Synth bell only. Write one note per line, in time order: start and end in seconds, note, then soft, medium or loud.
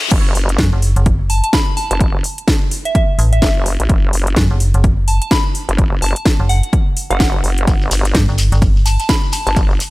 1.30 1.39 A5 medium
1.44 1.50 A5 medium
1.53 1.69 B5 medium
1.77 1.86 A5 medium
1.91 1.97 A5 medium
2.85 2.92 E5 medium
2.95 3.04 E5 medium
3.33 3.39 E5 medium
3.42 3.51 E5 medium
5.08 5.17 A5 medium
5.22 5.28 A5 medium
5.31 5.47 B5 medium
6.02 6.18 A5 medium
6.49 6.65 F#5 medium
7.11 7.58 F#5 medium
8.86 8.95 A5 medium
9.00 9.06 A5 medium
9.09 9.25 B5 medium
9.33 9.42 A5 medium
9.47 9.53 A5 medium